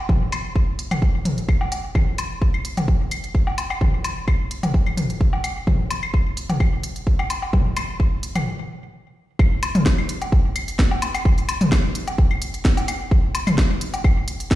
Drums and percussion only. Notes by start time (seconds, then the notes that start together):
0.09 kick, mid tom
0.32 closed hi-hat, claves, high woodblock
0.56 kick
0.79 closed hi-hat
0.91 closed hi-hat, mid tom, claves, low woodblock
1.02 kick
1.25 closed hi-hat, mid tom
1.38 closed hi-hat
1.49 kick, claves
1.61 low woodblock
1.72 closed hi-hat, low woodblock
1.95 kick, mid tom, claves
2.18 closed hi-hat, high woodblock
2.42 kick
2.54 claves
2.65 closed hi-hat
2.77 closed hi-hat, mid tom, low woodblock
2.88 kick
3.11 closed hi-hat, claves
3.24 closed hi-hat
3.35 kick
3.47 low woodblock
3.58 closed hi-hat, high woodblock
3.70 claves, low woodblock
3.81 kick, mid tom
4.04 closed hi-hat, high woodblock
4.28 kick, claves
4.51 closed hi-hat
4.63 closed hi-hat, mid tom, low woodblock
4.74 kick
4.86 claves
4.97 closed hi-hat, mid tom
5.10 closed hi-hat
5.21 kick
5.33 low woodblock
5.44 closed hi-hat, claves, low woodblock
5.67 kick, mid tom
5.90 closed hi-hat, high woodblock
6.03 claves
6.14 kick
6.37 closed hi-hat
6.50 closed hi-hat, mid tom, low woodblock
6.60 kick, claves
6.83 closed hi-hat
6.96 closed hi-hat
7.07 kick
7.19 claves, low woodblock
7.30 closed hi-hat, high woodblock
7.42 low woodblock
7.53 kick, mid tom
7.77 closed hi-hat, claves, high woodblock
8.00 kick
8.23 closed hi-hat
8.35 closed hi-hat, mid tom, claves, low woodblock
9.39 kick, claves
9.63 closed hi-hat, high woodblock
9.75 closed hi-hat, mid tom
9.86 kick, snare
9.98 claves
10.09 closed hi-hat
10.22 closed hi-hat, low woodblock
10.32 kick
10.56 closed hi-hat, claves
10.68 closed hi-hat
10.79 kick, snare
10.91 low woodblock
11.02 closed hi-hat, high woodblock
11.15 closed hi-hat, claves, low woodblock
11.25 kick
11.38 closed hi-hat
11.49 closed hi-hat, high woodblock
11.61 closed hi-hat, mid tom
11.72 kick, snare, claves
11.95 closed hi-hat
12.08 closed hi-hat, low woodblock
12.18 kick
12.31 claves
12.42 closed hi-hat
12.54 closed hi-hat
12.65 kick, snare
12.77 closed hi-hat, low woodblock
12.88 closed hi-hat, claves, low woodblock
13.11 kick
13.35 closed hi-hat, high woodblock
13.47 closed hi-hat, mid tom, claves
13.58 kick, snare
13.81 closed hi-hat
13.94 closed hi-hat, low woodblock
14.04 kick, claves
14.28 closed hi-hat
14.40 closed hi-hat
14.51 kick, snare